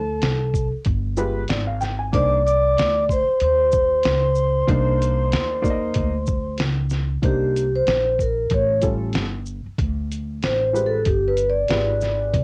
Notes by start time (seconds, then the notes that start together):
Already playing: D2 A4 A5
0.22 C2, snare, closed hi-hat
0.54 kick, shaker
0.72 muted upright bass stroke
0.85 G1, kick, closed hi-hat
1.17 G#3 F4 G4 B4, shaker
1.48 G#1 D5, snare, closed hi-hat
1.67 F5
1.81 G5, snare, shaker
1.99 G#5
2.13 C2 A#3 D4 D#4 C5 D5 D6, kick, closed hi-hat
2.45 D5 D6, shaker
2.77 D2, snare, closed hi-hat
3.09 C5 C6, kick, shaker
3.28 muted upright bass stroke
3.40 D#2 C5 C6, closed hi-hat
3.72 kick, shaker
4.03 C#2, snare, closed hi-hat
4.35 shaker
4.67 C2 A#3 D4 D#4 C5, kick, closed hi-hat
5.02 closed hi-hat, shaker
5.32 D#2, snare, closed hi-hat
5.62 A#3 D#4 D5, kick, shaker
5.70 D#5
5.94 D2, kick, closed hi-hat
6.26 kick, shaker
6.58 C#2, snare, closed hi-hat
6.90 snare, shaker
7.22 C2 A#3 D4 D#4 G4 C5, kick, closed hi-hat
7.56 closed hi-hat, shaker
7.76 C5
7.87 A#1, snare, closed hi-hat
8.19 A#4, kick, shaker
8.50 A1, kick, closed hi-hat
8.54 C#5
8.81 G3 C#4 F4 A4, kick, closed hi-hat, shaker
9.13 G1, snare, closed hi-hat
9.46 shaker
9.66 muted upright bass stroke
9.78 D2, kick, closed hi-hat
10.11 closed hi-hat, shaker
10.42 A1 C5, snare, closed hi-hat
10.73 G#3 F4 G4 B4, shaker
10.86 A4
11.05 G1 G4, kick, closed hi-hat
11.28 B4
11.37 closed hi-hat, shaker
11.50 D5
11.68 G#1 G#3 F4 G4 B4, snare, closed hi-hat
12.01 snare, shaker
12.34 C2, kick, closed hi-hat